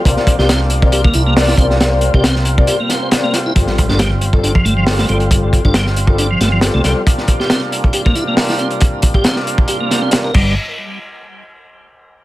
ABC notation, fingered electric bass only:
X:1
M:4/4
L:1/16
Q:"Swing 16ths" 1/4=137
K:Gm
V:1 name="Fingered electric bass" clef=bass
C,, z2 C,,6- C,, C,,4 C,,2- | C,,3 C,,4- C,, z8 | G,,, z2 G,,,6- G,,, G,,,4 G,,,2- | G,,,3 G,,,6- G,,, G,,,3 C,, C,, z |
z16 | z12 z2 G,,,2 | z16 |]